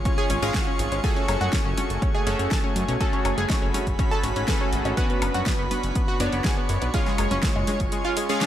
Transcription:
Already playing: supersaw synth G#3 C#4 F4 G#4 C#5, analog synth pad F4 C#5 G#5 C#6
0.05 synth pluck C#4, kick, closed hi-hat
0.18 synth pluck G#4, closed hi-hat
0.30 analog synth bass G#1, synth pluck C#4, open hi-hat, high bongo
0.42 analog synth bass G#1, supersaw synth G#3 C#4 F4 G#4 F5, synth pluck C#4, open hi-hat
0.54 synth pluck F#4, kick, snare, closed hi-hat
0.67 synth pluck C#4
0.79 analog synth bass G#1, open hi-hat
0.92 analog synth bass G#1, synth pluck C#4, closed hi-hat
1.04 supersaw synth A3 C#4 F#4 G#4 A4, analog synth pad A3 F#4, synth pluck G#4, kick, closed hi-hat
1.16 synth pluck C#4, closed hi-hat
1.28 analog synth bass F#1, synth pluck C#4, open hi-hat, high woodblock
1.41 analog synth bass F#2, synth pluck F#4, closed hi-hat, high bongo, low conga
1.53 synth pluck C#4, kick, snare, closed hi-hat
1.66 analog synth bass F#1, synth pluck C#4
1.78 synth pluck C#4, open hi-hat, high conga, low conga
1.90 analog synth bass F#1, closed hi-hat
2.02 synth pluck C#4, kick, closed hi-hat
2.15 synth pluck G#4, high bongo
2.27 analog synth bass F#1, supersaw synth A3 C#4 F#4 G#4 A4, synth pluck C#4, open hi-hat, low conga
2.39 analog synth bass F#1, synth pluck C#4, closed hi-hat
2.51 synth pluck A4, kick, snare, closed hi-hat
2.64 synth pluck C#4
2.76 analog synth bass F#2, open hi-hat, high bongo
2.88 analog synth bass B1, synth pluck C#4, closed hi-hat
3.00 supersaw synth A3 C#4 F#4 G#4 A4, synth pluck A4, analog synth pad B5, kick, closed hi-hat
3.13 synth pluck C#4, closed hi-hat
3.25 analog synth bass F#1, synth pluck C#4, open hi-hat, high woodblock
3.38 analog synth bass F#1, synth pluck G#4, closed hi-hat, low conga
3.49 synth pluck C#4, kick, snare, closed hi-hat, high bongo
3.62 analog synth bass F#1, synth pluck C#4
3.74 synth pluck C#4, open hi-hat, high conga, low conga
3.87 analog synth bass F#1, kick, closed hi-hat
3.99 synth pluck C#4, kick, closed hi-hat
4.11 synth pluck A4, high bongo
4.23 analog synth bass G#1, synth pluck C#4, open hi-hat
4.36 analog synth bass G#1, synth pluck C#4, open hi-hat
4.48 supersaw synth A3 C#4 F#4 G#4 A4, synth pluck B4, kick, snare, closed hi-hat
4.61 synth pluck C#4
4.73 analog synth bass G#1, open hi-hat
4.85 analog synth bass G#1, synth pluck C#4, closed hi-hat, high bongo
4.97 supersaw synth B3 C#4 D4 F#4 B4, synth pluck F#4, analog synth pad B5 C#6, kick, closed hi-hat
5.10 synth pluck B3, closed hi-hat
5.22 analog synth bass F#1, synth pluck B3, open hi-hat, high woodblock
5.34 analog synth bass F#2, synth pluck F#4, closed hi-hat, low conga
5.46 synth pluck B3, kick, snare, closed hi-hat, high bongo
5.59 analog synth bass F#1, synth pluck B3
5.71 synth pluck B3, open hi-hat, high conga, low conga
5.83 analog synth bass F#1, closed hi-hat
5.95 synth pluck B3, kick, closed hi-hat
6.08 synth pluck F#4
6.20 analog synth bass F#1, synth pluck B3, supersaw synth B3 D4 F#4 C#5 D5, open hi-hat, high bongo, low conga
6.32 analog synth bass F#1, synth pluck B3, closed hi-hat
6.44 synth pluck G#4, kick, snare, closed hi-hat
6.57 synth pluck B3
6.69 analog synth bass F#2, open hi-hat
6.82 analog synth bass B1, synth pluck B3, closed hi-hat, high bongo
6.94 supersaw synth G#3 C#4 F4 G#4 C#5, synth pluck F4, analog synth pad F4 C#5 G#5, kick, closed hi-hat
7.06 synth pluck G#3, snare, closed hi-hat
7.18 analog synth bass F#1, synth pluck G#3, open hi-hat, high woodblock
7.31 analog synth bass F#1, synth pluck C#4, closed hi-hat, low conga
7.43 synth pluck G#3, kick, snare, closed hi-hat
7.56 analog synth bass F#1, synth pluck G#3, high bongo
7.67 synth pluck G#3, open hi-hat, high conga, low conga
7.80 analog synth bass F#1, kick, closed hi-hat
7.92 synth pluck G#3, closed hi-hat
8.05 synth pluck F4, closed hi-hat
8.17 synth pluck G#3, open hi-hat, high bongo
8.29 synth pluck G#3, supersaw synth G#3 C#4 F4 G#4 F5, open hi-hat
8.41 synth pluck D4, snare, closed hi-hat

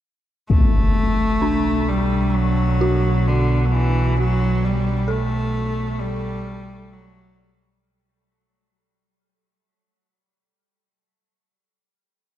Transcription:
0.49 synth drone B1 B2, cello A3, impact
1.42 synth bell D4
1.88 cello G3
2.35 cello F#3
2.81 synth bell F#4
3.27 cello D3
3.66 cello F#3
3.72 cello E3
4.19 cello F#3
4.64 cello G3
5.08 cello A3, synth bell A4
5.98 cello G3
6.93 cello F#3

